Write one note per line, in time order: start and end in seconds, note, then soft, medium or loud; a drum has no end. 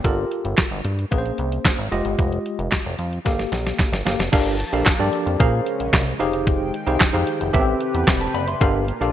0.04 0.25 G1 loud
0.04 0.64 F4 medium
0.04 0.64 G4 medium
0.04 0.64 A4 medium
0.04 0.65 A#4 medium
0.04 kick loud
0.04 closed hi-hat loud
0.31 closed hi-hat medium
0.45 0.55 G1 medium
0.45 closed hi-hat soft
0.57 kick loud
0.57 snare loud
0.57 clap medium
0.57 closed hi-hat medium
0.71 0.82 G1 medium
0.85 1.05 G2 loud
0.85 closed hi-hat medium
0.99 closed hi-hat soft
1.11 1.32 A#1 medium
1.11 1.76 A#3 medium
1.11 1.76 C#4 medium
1.11 1.76 G#4 medium
1.11 1.18 B4 medium
1.11 kick loud
1.11 closed hi-hat medium
1.18 1.79 C5 medium
1.26 closed hi-hat soft
1.38 1.59 C2 medium
1.38 closed hi-hat medium
1.52 closed hi-hat medium
1.65 kick loud
1.65 snare loud
1.65 clap loud
1.65 clap medium
1.65 closed hi-hat medium
1.78 1.89 G#1 medium
1.91 2.02 F1 medium
1.91 2.77 G#3 medium
1.91 2.77 F4 medium
1.91 2.77 G4 medium
1.91 2.78 D#5 loud
1.91 closed hi-hat medium
2.05 2.16 G1 medium
2.05 closed hi-hat soft
2.19 2.39 F1 loud
2.19 kick loud
2.19 closed hi-hat loud
2.32 closed hi-hat soft
2.46 closed hi-hat medium
2.59 2.69 F1 medium
2.59 closed hi-hat soft
2.71 kick loud
2.71 snare loud
2.71 clap medium
2.71 closed hi-hat medium
2.85 2.96 F1 medium
2.99 3.20 F2 medium
2.99 closed hi-hat medium
3.13 closed hi-hat medium
3.25 3.47 G1 loud
3.25 3.90 A#3 medium
3.25 3.90 G4 medium
3.25 3.90 A4 medium
3.25 3.90 F5 medium
3.25 kick loud
3.25 snare soft
3.25 closed hi-hat medium
3.39 snare soft
3.52 3.73 A#1 medium
3.52 snare medium
3.52 closed hi-hat medium
3.66 snare medium
3.66 closed hi-hat medium
3.79 kick loud
3.79 snare medium
3.79 clap medium
3.79 closed hi-hat medium
3.92 4.03 G1 medium
3.92 snare medium
3.92 closed hi-hat soft
4.05 4.16 G1 medium
4.05 4.21 A#3 medium
4.05 4.21 G4 medium
4.05 4.21 A4 medium
4.05 4.21 F5 medium
4.05 snare medium
4.05 closed hi-hat medium
4.19 4.30 F1 medium
4.19 snare medium
4.19 closed hi-hat medium
4.32 4.64 G1 loud
4.32 5.39 F3 medium
4.32 5.39 A#3 medium
4.32 4.55 D4 medium
4.32 4.55 G4 medium
4.32 4.55 A4 medium
4.32 4.55 A#4 medium
4.32 4.55 F5 loud
4.32 5.39 A5 medium
4.32 kick loud
4.32 closed hi-hat loud
4.32 crash loud
4.60 closed hi-hat medium
4.73 4.83 A#1 medium
4.73 4.88 D4 medium
4.73 4.88 G4 medium
4.73 4.88 A4 medium
4.73 4.88 A#4 medium
4.73 4.88 F5 loud
4.73 closed hi-hat medium
4.85 4.92 G2 medium
4.85 kick loud
4.85 snare loud
4.85 clap medium
4.85 clap loud
4.85 closed hi-hat medium
4.99 5.10 G2 loud
4.99 5.40 D4 medium
4.99 5.40 G4 medium
4.99 5.40 A4 medium
4.99 5.39 A#4 medium
4.99 5.40 D5 loud
5.13 closed hi-hat medium
5.26 5.37 F2 medium
5.26 closed hi-hat medium
5.39 5.61 A#2 loud
5.39 6.20 C#3 medium
5.39 6.19 G#3 medium
5.39 6.04 C#4 medium
5.39 6.20 C#4 loud
5.39 6.04 G#4 medium
5.39 6.04 A#4 medium
5.39 6.04 C5 medium
5.39 6.04 F5 loud
5.39 kick loud
5.39 closed hi-hat medium
5.66 closed hi-hat medium
5.80 5.91 A#1 medium
5.80 closed hi-hat medium
5.93 6.14 C2 loud
5.93 kick loud
5.93 snare loud
5.93 clap loud
5.93 clap medium
5.93 closed hi-hat medium
6.07 closed hi-hat soft
6.19 6.72 F1 medium
6.19 7.53 D#3 medium
6.19 7.53 G#3 medium
6.19 6.73 D#4 loud
6.19 6.74 G4 medium
6.19 6.74 G#4 medium
6.19 6.74 C5 medium
6.19 6.74 F5 loud
6.19 7.53 G5 medium
6.19 closed hi-hat medium
6.33 closed hi-hat medium
6.47 kick loud
6.47 closed hi-hat loud
6.74 closed hi-hat medium
6.86 6.98 C2 loud
6.86 7.02 D#4 medium
6.86 7.02 G4 medium
6.86 7.02 G#4 medium
6.86 7.02 C5 medium
6.86 7.02 F5 medium
6.86 closed hi-hat medium
7.00 7.06 F2 medium
7.00 kick loud
7.00 snare loud
7.00 clap medium
7.00 clap loud
7.00 closed hi-hat medium
7.13 7.25 F2 medium
7.13 7.54 D#4 medium
7.13 7.52 G4 medium
7.13 7.54 G#4 medium
7.13 7.54 C5 medium
7.13 7.54 F5 loud
7.27 closed hi-hat medium
7.41 7.51 F1 medium
7.41 closed hi-hat medium
7.53 7.75 A1 loud
7.53 8.60 C3 medium
7.53 7.60 B3 medium
7.53 8.39 G4 medium
7.53 8.60 G4 loud
7.53 8.40 A4 medium
7.53 7.81 B4 medium
7.53 8.60 B4 medium
7.53 7.81 E5 loud
7.53 kick loud
7.53 closed hi-hat medium
7.59 8.42 C4 medium
7.80 closed hi-hat medium
7.95 8.05 E2 loud
7.95 closed hi-hat medium
8.07 8.28 E1 medium
8.07 kick loud
8.07 snare loud
8.07 clap medium
8.07 clap loud
8.07 closed hi-hat medium
8.21 8.34 C5 medium
8.21 8.34 A5 medium
8.21 closed hi-hat soft
8.34 8.55 F#1 medium
8.34 8.48 D5 medium
8.34 8.47 B5 medium
8.34 closed hi-hat medium
8.48 8.74 E5 medium
8.48 8.73 C6 medium
8.48 closed hi-hat medium
8.61 8.93 G1 loud
8.61 9.12 A#2 medium
8.61 9.12 A#3 medium
8.61 8.83 D4 medium
8.61 9.12 F4 medium
8.61 8.83 G4 medium
8.61 8.84 A4 medium
8.61 8.84 A#4 medium
8.61 8.84 F5 loud
8.61 kick loud
8.61 closed hi-hat loud
8.88 closed hi-hat medium
9.01 9.12 A#1 medium
9.01 9.12 D4 medium
9.01 9.12 G4 medium
9.01 9.12 A4 medium
9.01 9.12 A#4 medium
9.01 9.12 F5 medium
9.01 closed hi-hat medium